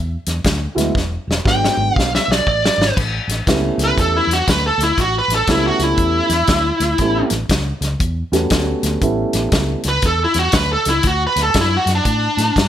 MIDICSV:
0, 0, Header, 1, 5, 480
1, 0, Start_track
1, 0, Tempo, 504626
1, 895, Time_signature, 4, 2, 24, 8
1, 12062, End_track
2, 0, Start_track
2, 0, Title_t, "Lead electric guitar"
2, 0, Program_c, 0, 29
2, 1407, Note_on_c, 0, 79, 99
2, 1864, Note_off_c, 0, 79, 0
2, 1864, Note_on_c, 0, 77, 99
2, 2012, Note_off_c, 0, 77, 0
2, 2047, Note_on_c, 0, 76, 74
2, 2186, Note_off_c, 0, 76, 0
2, 2207, Note_on_c, 0, 74, 72
2, 2346, Note_off_c, 0, 74, 0
2, 2358, Note_on_c, 0, 74, 79
2, 2811, Note_off_c, 0, 74, 0
2, 3652, Note_on_c, 0, 71, 82
2, 3788, Note_off_c, 0, 71, 0
2, 3808, Note_on_c, 0, 69, 73
2, 3946, Note_off_c, 0, 69, 0
2, 3964, Note_on_c, 0, 64, 67
2, 4121, Note_off_c, 0, 64, 0
2, 4121, Note_on_c, 0, 66, 78
2, 4262, Note_off_c, 0, 66, 0
2, 4276, Note_on_c, 0, 71, 90
2, 4420, Note_off_c, 0, 71, 0
2, 4442, Note_on_c, 0, 69, 73
2, 4583, Note_off_c, 0, 69, 0
2, 4598, Note_on_c, 0, 64, 77
2, 4741, Note_off_c, 0, 64, 0
2, 4764, Note_on_c, 0, 66, 70
2, 4904, Note_off_c, 0, 66, 0
2, 4932, Note_on_c, 0, 71, 74
2, 5068, Note_off_c, 0, 71, 0
2, 5093, Note_on_c, 0, 69, 85
2, 5229, Note_off_c, 0, 69, 0
2, 5237, Note_on_c, 0, 64, 65
2, 5380, Note_off_c, 0, 64, 0
2, 5398, Note_on_c, 0, 66, 72
2, 5552, Note_off_c, 0, 66, 0
2, 5552, Note_on_c, 0, 64, 82
2, 6945, Note_off_c, 0, 64, 0
2, 9403, Note_on_c, 0, 71, 85
2, 9546, Note_off_c, 0, 71, 0
2, 9572, Note_on_c, 0, 69, 69
2, 9711, Note_off_c, 0, 69, 0
2, 9742, Note_on_c, 0, 64, 81
2, 9884, Note_off_c, 0, 64, 0
2, 9884, Note_on_c, 0, 66, 72
2, 10027, Note_off_c, 0, 66, 0
2, 10043, Note_on_c, 0, 71, 78
2, 10186, Note_off_c, 0, 71, 0
2, 10202, Note_on_c, 0, 69, 65
2, 10346, Note_off_c, 0, 69, 0
2, 10364, Note_on_c, 0, 64, 78
2, 10531, Note_off_c, 0, 64, 0
2, 10531, Note_on_c, 0, 66, 74
2, 10670, Note_off_c, 0, 66, 0
2, 10717, Note_on_c, 0, 71, 74
2, 10844, Note_off_c, 0, 71, 0
2, 10872, Note_on_c, 0, 69, 89
2, 11002, Note_off_c, 0, 69, 0
2, 11041, Note_on_c, 0, 64, 73
2, 11193, Note_off_c, 0, 64, 0
2, 11193, Note_on_c, 0, 66, 76
2, 11323, Note_off_c, 0, 66, 0
2, 11367, Note_on_c, 0, 62, 68
2, 12062, Note_off_c, 0, 62, 0
2, 12062, End_track
3, 0, Start_track
3, 0, Title_t, "Upright piano"
3, 0, Program_c, 1, 0
3, 710, Note_on_c, 1, 54, 64
3, 718, Note_on_c, 1, 56, 64
3, 720, Note_on_c, 1, 64, 79
3, 724, Note_on_c, 1, 59, 58
3, 873, Note_off_c, 1, 54, 0
3, 877, Note_off_c, 1, 56, 0
3, 878, Note_off_c, 1, 64, 0
3, 880, Note_off_c, 1, 59, 0
3, 1376, Note_on_c, 1, 54, 51
3, 1378, Note_on_c, 1, 56, 50
3, 1379, Note_on_c, 1, 62, 59
3, 1382, Note_on_c, 1, 59, 49
3, 2098, Note_off_c, 1, 54, 0
3, 2099, Note_off_c, 1, 56, 0
3, 2099, Note_off_c, 1, 62, 0
3, 2101, Note_off_c, 1, 59, 0
3, 3294, Note_on_c, 1, 59, 64
3, 3297, Note_on_c, 1, 55, 62
3, 3299, Note_on_c, 1, 57, 59
3, 3300, Note_on_c, 1, 64, 71
3, 3303, Note_on_c, 1, 61, 60
3, 4017, Note_off_c, 1, 59, 0
3, 4018, Note_off_c, 1, 55, 0
3, 4019, Note_off_c, 1, 57, 0
3, 4020, Note_off_c, 1, 64, 0
3, 4021, Note_off_c, 1, 61, 0
3, 5217, Note_on_c, 1, 55, 62
3, 5219, Note_on_c, 1, 59, 55
3, 5219, Note_on_c, 1, 61, 59
3, 5222, Note_on_c, 1, 57, 60
3, 5223, Note_on_c, 1, 64, 71
3, 5939, Note_off_c, 1, 55, 0
3, 5940, Note_off_c, 1, 59, 0
3, 5940, Note_off_c, 1, 61, 0
3, 5941, Note_off_c, 1, 57, 0
3, 5942, Note_off_c, 1, 64, 0
3, 6660, Note_on_c, 1, 55, 57
3, 6660, Note_on_c, 1, 61, 54
3, 6661, Note_on_c, 1, 57, 55
3, 6662, Note_on_c, 1, 64, 63
3, 6663, Note_on_c, 1, 59, 52
3, 6931, Note_off_c, 1, 55, 0
3, 6931, Note_off_c, 1, 57, 0
3, 6931, Note_off_c, 1, 61, 0
3, 6932, Note_off_c, 1, 59, 0
3, 6932, Note_off_c, 1, 64, 0
3, 7911, Note_on_c, 1, 55, 63
3, 7916, Note_on_c, 1, 61, 68
3, 7918, Note_on_c, 1, 57, 66
3, 7918, Note_on_c, 1, 59, 61
3, 7919, Note_on_c, 1, 66, 75
3, 8537, Note_off_c, 1, 55, 0
3, 8539, Note_off_c, 1, 61, 0
3, 8540, Note_off_c, 1, 57, 0
3, 8540, Note_off_c, 1, 59, 0
3, 8541, Note_off_c, 1, 66, 0
3, 8576, Note_on_c, 1, 55, 70
3, 8578, Note_on_c, 1, 59, 61
3, 8579, Note_on_c, 1, 57, 68
3, 8580, Note_on_c, 1, 61, 60
3, 8582, Note_on_c, 1, 64, 72
3, 9301, Note_off_c, 1, 55, 0
3, 9301, Note_off_c, 1, 59, 0
3, 9302, Note_off_c, 1, 57, 0
3, 9303, Note_off_c, 1, 61, 0
3, 9304, Note_off_c, 1, 64, 0
3, 12062, End_track
4, 0, Start_track
4, 0, Title_t, "Fingered electric bass"
4, 0, Program_c, 2, 33
4, 0, Note_on_c, 2, 40, 73
4, 151, Note_off_c, 2, 40, 0
4, 256, Note_on_c, 2, 40, 87
4, 372, Note_off_c, 2, 40, 0
4, 421, Note_on_c, 2, 38, 83
4, 628, Note_off_c, 2, 38, 0
4, 728, Note_on_c, 2, 38, 83
4, 846, Note_off_c, 2, 38, 0
4, 902, Note_on_c, 2, 28, 84
4, 1109, Note_off_c, 2, 28, 0
4, 1213, Note_on_c, 2, 28, 86
4, 1329, Note_off_c, 2, 28, 0
4, 1385, Note_on_c, 2, 32, 83
4, 1591, Note_off_c, 2, 32, 0
4, 1685, Note_on_c, 2, 32, 91
4, 1803, Note_off_c, 2, 32, 0
4, 1861, Note_on_c, 2, 35, 82
4, 2068, Note_off_c, 2, 35, 0
4, 2169, Note_on_c, 2, 35, 75
4, 2286, Note_off_c, 2, 35, 0
4, 2345, Note_on_c, 2, 33, 78
4, 2550, Note_off_c, 2, 33, 0
4, 2642, Note_on_c, 2, 32, 83
4, 2761, Note_off_c, 2, 32, 0
4, 2821, Note_on_c, 2, 33, 82
4, 3028, Note_off_c, 2, 33, 0
4, 3117, Note_on_c, 2, 33, 81
4, 3238, Note_off_c, 2, 33, 0
4, 3304, Note_on_c, 2, 37, 76
4, 3510, Note_off_c, 2, 37, 0
4, 3594, Note_on_c, 2, 37, 88
4, 3716, Note_off_c, 2, 37, 0
4, 3781, Note_on_c, 2, 40, 77
4, 3988, Note_off_c, 2, 40, 0
4, 4065, Note_on_c, 2, 40, 82
4, 4190, Note_off_c, 2, 40, 0
4, 4259, Note_on_c, 2, 38, 78
4, 4466, Note_off_c, 2, 38, 0
4, 4546, Note_on_c, 2, 38, 90
4, 4670, Note_off_c, 2, 38, 0
4, 4731, Note_on_c, 2, 33, 82
4, 4941, Note_off_c, 2, 33, 0
4, 5023, Note_on_c, 2, 33, 80
4, 5149, Note_off_c, 2, 33, 0
4, 5208, Note_on_c, 2, 37, 78
4, 5419, Note_off_c, 2, 37, 0
4, 5510, Note_on_c, 2, 37, 88
4, 5633, Note_off_c, 2, 37, 0
4, 5685, Note_on_c, 2, 40, 80
4, 5897, Note_off_c, 2, 40, 0
4, 5988, Note_on_c, 2, 40, 86
4, 6112, Note_off_c, 2, 40, 0
4, 6161, Note_on_c, 2, 38, 84
4, 6375, Note_off_c, 2, 38, 0
4, 6470, Note_on_c, 2, 38, 87
4, 6593, Note_off_c, 2, 38, 0
4, 6644, Note_on_c, 2, 33, 83
4, 6857, Note_off_c, 2, 33, 0
4, 6952, Note_on_c, 2, 33, 89
4, 7075, Note_off_c, 2, 33, 0
4, 7128, Note_on_c, 2, 37, 80
4, 7340, Note_off_c, 2, 37, 0
4, 7428, Note_on_c, 2, 37, 91
4, 7553, Note_off_c, 2, 37, 0
4, 7605, Note_on_c, 2, 40, 87
4, 7818, Note_off_c, 2, 40, 0
4, 7915, Note_on_c, 2, 40, 89
4, 8037, Note_off_c, 2, 40, 0
4, 8092, Note_on_c, 2, 38, 81
4, 8303, Note_off_c, 2, 38, 0
4, 8399, Note_on_c, 2, 38, 86
4, 8521, Note_off_c, 2, 38, 0
4, 8572, Note_on_c, 2, 33, 80
4, 8783, Note_off_c, 2, 33, 0
4, 8881, Note_on_c, 2, 33, 87
4, 9002, Note_off_c, 2, 33, 0
4, 9060, Note_on_c, 2, 37, 78
4, 9268, Note_off_c, 2, 37, 0
4, 9366, Note_on_c, 2, 37, 96
4, 9486, Note_off_c, 2, 37, 0
4, 9535, Note_on_c, 2, 40, 85
4, 9746, Note_off_c, 2, 40, 0
4, 9842, Note_on_c, 2, 40, 77
4, 9963, Note_off_c, 2, 40, 0
4, 10014, Note_on_c, 2, 38, 86
4, 10225, Note_off_c, 2, 38, 0
4, 10331, Note_on_c, 2, 37, 85
4, 10449, Note_off_c, 2, 37, 0
4, 10495, Note_on_c, 2, 38, 83
4, 10706, Note_off_c, 2, 38, 0
4, 10805, Note_on_c, 2, 38, 82
4, 10926, Note_off_c, 2, 38, 0
4, 10980, Note_on_c, 2, 42, 77
4, 11189, Note_off_c, 2, 42, 0
4, 11280, Note_on_c, 2, 42, 87
4, 11402, Note_off_c, 2, 42, 0
4, 11464, Note_on_c, 2, 45, 74
4, 11672, Note_off_c, 2, 45, 0
4, 11769, Note_on_c, 2, 45, 84
4, 11888, Note_off_c, 2, 45, 0
4, 11947, Note_on_c, 2, 43, 81
4, 12062, Note_off_c, 2, 43, 0
4, 12062, End_track
5, 0, Start_track
5, 0, Title_t, "Drums"
5, 250, Note_on_c, 9, 42, 55
5, 266, Note_on_c, 9, 38, 35
5, 346, Note_off_c, 9, 42, 0
5, 361, Note_off_c, 9, 38, 0
5, 421, Note_on_c, 9, 42, 67
5, 424, Note_on_c, 9, 36, 80
5, 436, Note_on_c, 9, 38, 100
5, 516, Note_off_c, 9, 42, 0
5, 519, Note_off_c, 9, 36, 0
5, 531, Note_off_c, 9, 38, 0
5, 739, Note_on_c, 9, 42, 59
5, 754, Note_on_c, 9, 38, 33
5, 834, Note_off_c, 9, 42, 0
5, 849, Note_off_c, 9, 38, 0
5, 904, Note_on_c, 9, 36, 80
5, 922, Note_on_c, 9, 38, 55
5, 999, Note_off_c, 9, 36, 0
5, 1017, Note_off_c, 9, 38, 0
5, 1243, Note_on_c, 9, 38, 62
5, 1338, Note_off_c, 9, 38, 0
5, 1384, Note_on_c, 9, 36, 87
5, 1398, Note_on_c, 9, 38, 54
5, 1479, Note_off_c, 9, 36, 0
5, 1493, Note_off_c, 9, 38, 0
5, 1565, Note_on_c, 9, 38, 68
5, 1660, Note_off_c, 9, 38, 0
5, 1868, Note_on_c, 9, 36, 77
5, 1894, Note_on_c, 9, 38, 68
5, 1963, Note_off_c, 9, 36, 0
5, 1989, Note_off_c, 9, 38, 0
5, 2043, Note_on_c, 9, 38, 64
5, 2139, Note_off_c, 9, 38, 0
5, 2203, Note_on_c, 9, 38, 81
5, 2298, Note_off_c, 9, 38, 0
5, 2348, Note_on_c, 9, 36, 84
5, 2443, Note_off_c, 9, 36, 0
5, 2525, Note_on_c, 9, 38, 92
5, 2620, Note_off_c, 9, 38, 0
5, 2678, Note_on_c, 9, 38, 81
5, 2773, Note_off_c, 9, 38, 0
5, 2826, Note_on_c, 9, 36, 80
5, 2828, Note_on_c, 9, 49, 85
5, 2843, Note_on_c, 9, 38, 28
5, 2921, Note_off_c, 9, 36, 0
5, 2923, Note_off_c, 9, 49, 0
5, 2939, Note_off_c, 9, 38, 0
5, 3132, Note_on_c, 9, 42, 61
5, 3148, Note_on_c, 9, 38, 35
5, 3228, Note_off_c, 9, 42, 0
5, 3243, Note_off_c, 9, 38, 0
5, 3301, Note_on_c, 9, 42, 77
5, 3302, Note_on_c, 9, 36, 77
5, 3316, Note_on_c, 9, 38, 104
5, 3396, Note_off_c, 9, 42, 0
5, 3397, Note_off_c, 9, 36, 0
5, 3411, Note_off_c, 9, 38, 0
5, 3606, Note_on_c, 9, 42, 57
5, 3621, Note_on_c, 9, 38, 31
5, 3701, Note_off_c, 9, 42, 0
5, 3716, Note_off_c, 9, 38, 0
5, 3782, Note_on_c, 9, 36, 77
5, 3785, Note_on_c, 9, 42, 73
5, 3801, Note_on_c, 9, 38, 26
5, 3877, Note_off_c, 9, 36, 0
5, 3880, Note_off_c, 9, 42, 0
5, 3896, Note_off_c, 9, 38, 0
5, 4099, Note_on_c, 9, 42, 52
5, 4114, Note_on_c, 9, 38, 33
5, 4194, Note_off_c, 9, 42, 0
5, 4209, Note_off_c, 9, 38, 0
5, 4257, Note_on_c, 9, 42, 76
5, 4259, Note_on_c, 9, 36, 75
5, 4272, Note_on_c, 9, 38, 99
5, 4352, Note_off_c, 9, 42, 0
5, 4354, Note_off_c, 9, 36, 0
5, 4368, Note_off_c, 9, 38, 0
5, 4569, Note_on_c, 9, 42, 57
5, 4584, Note_on_c, 9, 38, 32
5, 4664, Note_off_c, 9, 42, 0
5, 4679, Note_off_c, 9, 38, 0
5, 4735, Note_on_c, 9, 36, 78
5, 4736, Note_on_c, 9, 42, 78
5, 4751, Note_on_c, 9, 38, 29
5, 4830, Note_off_c, 9, 36, 0
5, 4831, Note_off_c, 9, 42, 0
5, 4846, Note_off_c, 9, 38, 0
5, 5042, Note_on_c, 9, 42, 58
5, 5057, Note_on_c, 9, 38, 34
5, 5137, Note_off_c, 9, 42, 0
5, 5152, Note_off_c, 9, 38, 0
5, 5205, Note_on_c, 9, 42, 77
5, 5210, Note_on_c, 9, 36, 74
5, 5221, Note_on_c, 9, 38, 94
5, 5301, Note_off_c, 9, 42, 0
5, 5306, Note_off_c, 9, 36, 0
5, 5316, Note_off_c, 9, 38, 0
5, 5511, Note_on_c, 9, 42, 56
5, 5527, Note_on_c, 9, 38, 32
5, 5606, Note_off_c, 9, 42, 0
5, 5622, Note_off_c, 9, 38, 0
5, 5683, Note_on_c, 9, 42, 76
5, 5686, Note_on_c, 9, 36, 78
5, 5778, Note_off_c, 9, 42, 0
5, 5781, Note_off_c, 9, 36, 0
5, 5989, Note_on_c, 9, 42, 62
5, 6004, Note_on_c, 9, 38, 32
5, 6084, Note_off_c, 9, 42, 0
5, 6099, Note_off_c, 9, 38, 0
5, 6157, Note_on_c, 9, 42, 77
5, 6166, Note_on_c, 9, 36, 80
5, 6172, Note_on_c, 9, 38, 96
5, 6252, Note_off_c, 9, 42, 0
5, 6261, Note_off_c, 9, 36, 0
5, 6268, Note_off_c, 9, 38, 0
5, 6470, Note_on_c, 9, 42, 60
5, 6486, Note_on_c, 9, 38, 33
5, 6565, Note_off_c, 9, 42, 0
5, 6581, Note_off_c, 9, 38, 0
5, 6640, Note_on_c, 9, 42, 77
5, 6647, Note_on_c, 9, 36, 74
5, 6655, Note_on_c, 9, 38, 30
5, 6735, Note_off_c, 9, 42, 0
5, 6742, Note_off_c, 9, 36, 0
5, 6750, Note_off_c, 9, 38, 0
5, 6942, Note_on_c, 9, 42, 65
5, 6958, Note_on_c, 9, 38, 37
5, 7037, Note_off_c, 9, 42, 0
5, 7053, Note_off_c, 9, 38, 0
5, 7128, Note_on_c, 9, 42, 85
5, 7129, Note_on_c, 9, 36, 82
5, 7143, Note_on_c, 9, 38, 95
5, 7223, Note_off_c, 9, 42, 0
5, 7224, Note_off_c, 9, 36, 0
5, 7238, Note_off_c, 9, 38, 0
5, 7436, Note_on_c, 9, 42, 56
5, 7452, Note_on_c, 9, 38, 33
5, 7531, Note_off_c, 9, 42, 0
5, 7547, Note_off_c, 9, 38, 0
5, 7609, Note_on_c, 9, 42, 72
5, 7612, Note_on_c, 9, 36, 76
5, 7704, Note_off_c, 9, 42, 0
5, 7707, Note_off_c, 9, 36, 0
5, 7924, Note_on_c, 9, 42, 61
5, 7939, Note_on_c, 9, 38, 32
5, 8019, Note_off_c, 9, 42, 0
5, 8034, Note_off_c, 9, 38, 0
5, 8085, Note_on_c, 9, 42, 81
5, 8094, Note_on_c, 9, 36, 75
5, 8101, Note_on_c, 9, 38, 100
5, 8180, Note_off_c, 9, 42, 0
5, 8189, Note_off_c, 9, 36, 0
5, 8196, Note_off_c, 9, 38, 0
5, 8399, Note_on_c, 9, 42, 57
5, 8414, Note_on_c, 9, 38, 34
5, 8494, Note_off_c, 9, 42, 0
5, 8510, Note_off_c, 9, 38, 0
5, 8574, Note_on_c, 9, 42, 73
5, 8576, Note_on_c, 9, 36, 77
5, 8669, Note_off_c, 9, 42, 0
5, 8671, Note_off_c, 9, 36, 0
5, 8875, Note_on_c, 9, 42, 64
5, 8891, Note_on_c, 9, 38, 34
5, 8970, Note_off_c, 9, 42, 0
5, 8986, Note_off_c, 9, 38, 0
5, 9052, Note_on_c, 9, 42, 77
5, 9058, Note_on_c, 9, 36, 81
5, 9067, Note_on_c, 9, 38, 95
5, 9147, Note_off_c, 9, 42, 0
5, 9153, Note_off_c, 9, 36, 0
5, 9163, Note_off_c, 9, 38, 0
5, 9355, Note_on_c, 9, 42, 61
5, 9370, Note_on_c, 9, 38, 34
5, 9450, Note_off_c, 9, 42, 0
5, 9465, Note_off_c, 9, 38, 0
5, 9531, Note_on_c, 9, 42, 74
5, 9538, Note_on_c, 9, 36, 74
5, 9546, Note_on_c, 9, 38, 29
5, 9626, Note_off_c, 9, 42, 0
5, 9633, Note_off_c, 9, 36, 0
5, 9641, Note_off_c, 9, 38, 0
5, 9834, Note_on_c, 9, 42, 62
5, 9849, Note_on_c, 9, 38, 33
5, 9929, Note_off_c, 9, 42, 0
5, 9945, Note_off_c, 9, 38, 0
5, 10005, Note_on_c, 9, 42, 80
5, 10018, Note_on_c, 9, 36, 77
5, 10021, Note_on_c, 9, 38, 101
5, 10100, Note_off_c, 9, 42, 0
5, 10113, Note_off_c, 9, 36, 0
5, 10116, Note_off_c, 9, 38, 0
5, 10322, Note_on_c, 9, 42, 59
5, 10337, Note_on_c, 9, 38, 35
5, 10417, Note_off_c, 9, 42, 0
5, 10432, Note_off_c, 9, 38, 0
5, 10491, Note_on_c, 9, 42, 79
5, 10501, Note_on_c, 9, 36, 83
5, 10586, Note_off_c, 9, 42, 0
5, 10596, Note_off_c, 9, 36, 0
5, 10809, Note_on_c, 9, 42, 72
5, 10824, Note_on_c, 9, 38, 35
5, 10904, Note_off_c, 9, 42, 0
5, 10919, Note_off_c, 9, 38, 0
5, 10976, Note_on_c, 9, 42, 81
5, 10983, Note_on_c, 9, 36, 84
5, 10991, Note_on_c, 9, 38, 104
5, 11071, Note_off_c, 9, 42, 0
5, 11078, Note_off_c, 9, 36, 0
5, 11087, Note_off_c, 9, 38, 0
5, 11289, Note_on_c, 9, 42, 57
5, 11305, Note_on_c, 9, 38, 35
5, 11384, Note_off_c, 9, 42, 0
5, 11400, Note_off_c, 9, 38, 0
5, 11462, Note_on_c, 9, 42, 77
5, 11465, Note_on_c, 9, 36, 77
5, 11557, Note_off_c, 9, 42, 0
5, 11560, Note_off_c, 9, 36, 0
5, 11777, Note_on_c, 9, 42, 62
5, 11793, Note_on_c, 9, 38, 31
5, 11873, Note_off_c, 9, 42, 0
5, 11888, Note_off_c, 9, 38, 0
5, 11948, Note_on_c, 9, 36, 78
5, 11951, Note_on_c, 9, 42, 80
5, 11966, Note_on_c, 9, 38, 98
5, 12043, Note_off_c, 9, 36, 0
5, 12046, Note_off_c, 9, 42, 0
5, 12061, Note_off_c, 9, 38, 0
5, 12062, End_track
0, 0, End_of_file